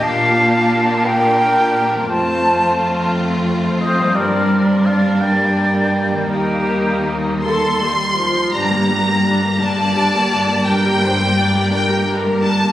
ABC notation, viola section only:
X:1
M:6/8
L:1/16
Q:3/8=57
K:Eblyd
V:1 name="Viola section"
B,12 | A,12 | G,12- | G,6 A2 G,2 F,2 |
[K:Gm] [G,D] [B,G] [G,D] [B,G] [G,D] [B,G] [G,D] [B,G] [G,D] [B,G] [G,D] [B,G] | [G,D] [B,G] [G,D] [B,G] [G,D] [B,G] [G,D] [B,G] [G,D] [B,G] [G,D] [B,G] |]